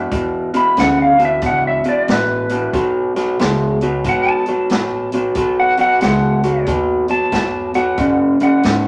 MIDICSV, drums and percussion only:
0, 0, Header, 1, 2, 480
1, 0, Start_track
1, 0, Tempo, 655738
1, 87, Time_signature, 4, 2, 24, 8
1, 6498, End_track
2, 0, Start_track
2, 0, Title_t, "Drums"
2, 84, Note_on_c, 9, 42, 80
2, 85, Note_on_c, 9, 36, 101
2, 157, Note_off_c, 9, 42, 0
2, 158, Note_off_c, 9, 36, 0
2, 394, Note_on_c, 9, 42, 67
2, 467, Note_off_c, 9, 42, 0
2, 562, Note_on_c, 9, 42, 81
2, 572, Note_on_c, 9, 38, 115
2, 635, Note_off_c, 9, 42, 0
2, 645, Note_off_c, 9, 38, 0
2, 873, Note_on_c, 9, 42, 65
2, 946, Note_off_c, 9, 42, 0
2, 1036, Note_on_c, 9, 42, 79
2, 1042, Note_on_c, 9, 36, 108
2, 1109, Note_off_c, 9, 42, 0
2, 1115, Note_off_c, 9, 36, 0
2, 1347, Note_on_c, 9, 42, 56
2, 1420, Note_off_c, 9, 42, 0
2, 1523, Note_on_c, 9, 42, 73
2, 1533, Note_on_c, 9, 38, 105
2, 1596, Note_off_c, 9, 42, 0
2, 1606, Note_off_c, 9, 38, 0
2, 1825, Note_on_c, 9, 42, 58
2, 1898, Note_off_c, 9, 42, 0
2, 2002, Note_on_c, 9, 36, 105
2, 2002, Note_on_c, 9, 42, 75
2, 2075, Note_off_c, 9, 36, 0
2, 2076, Note_off_c, 9, 42, 0
2, 2314, Note_on_c, 9, 42, 56
2, 2324, Note_on_c, 9, 38, 28
2, 2387, Note_off_c, 9, 42, 0
2, 2397, Note_off_c, 9, 38, 0
2, 2483, Note_on_c, 9, 42, 73
2, 2494, Note_on_c, 9, 38, 112
2, 2557, Note_off_c, 9, 42, 0
2, 2567, Note_off_c, 9, 38, 0
2, 2788, Note_on_c, 9, 42, 58
2, 2862, Note_off_c, 9, 42, 0
2, 2959, Note_on_c, 9, 42, 74
2, 2962, Note_on_c, 9, 36, 97
2, 3032, Note_off_c, 9, 42, 0
2, 3035, Note_off_c, 9, 36, 0
2, 3263, Note_on_c, 9, 42, 54
2, 3336, Note_off_c, 9, 42, 0
2, 3437, Note_on_c, 9, 42, 84
2, 3447, Note_on_c, 9, 38, 97
2, 3510, Note_off_c, 9, 42, 0
2, 3520, Note_off_c, 9, 38, 0
2, 3747, Note_on_c, 9, 42, 64
2, 3820, Note_off_c, 9, 42, 0
2, 3914, Note_on_c, 9, 42, 82
2, 3920, Note_on_c, 9, 36, 102
2, 3987, Note_off_c, 9, 42, 0
2, 3993, Note_off_c, 9, 36, 0
2, 4226, Note_on_c, 9, 42, 63
2, 4299, Note_off_c, 9, 42, 0
2, 4397, Note_on_c, 9, 42, 87
2, 4407, Note_on_c, 9, 38, 100
2, 4470, Note_off_c, 9, 42, 0
2, 4480, Note_off_c, 9, 38, 0
2, 4709, Note_on_c, 9, 42, 64
2, 4783, Note_off_c, 9, 42, 0
2, 4879, Note_on_c, 9, 36, 101
2, 4879, Note_on_c, 9, 42, 76
2, 4952, Note_off_c, 9, 42, 0
2, 4953, Note_off_c, 9, 36, 0
2, 5183, Note_on_c, 9, 42, 58
2, 5256, Note_off_c, 9, 42, 0
2, 5358, Note_on_c, 9, 42, 78
2, 5360, Note_on_c, 9, 36, 79
2, 5369, Note_on_c, 9, 38, 98
2, 5432, Note_off_c, 9, 42, 0
2, 5434, Note_off_c, 9, 36, 0
2, 5442, Note_off_c, 9, 38, 0
2, 5666, Note_on_c, 9, 42, 61
2, 5739, Note_off_c, 9, 42, 0
2, 5837, Note_on_c, 9, 42, 73
2, 5840, Note_on_c, 9, 36, 108
2, 5911, Note_off_c, 9, 42, 0
2, 5914, Note_off_c, 9, 36, 0
2, 6148, Note_on_c, 9, 42, 56
2, 6222, Note_off_c, 9, 42, 0
2, 6318, Note_on_c, 9, 42, 79
2, 6329, Note_on_c, 9, 38, 116
2, 6392, Note_off_c, 9, 42, 0
2, 6402, Note_off_c, 9, 38, 0
2, 6498, End_track
0, 0, End_of_file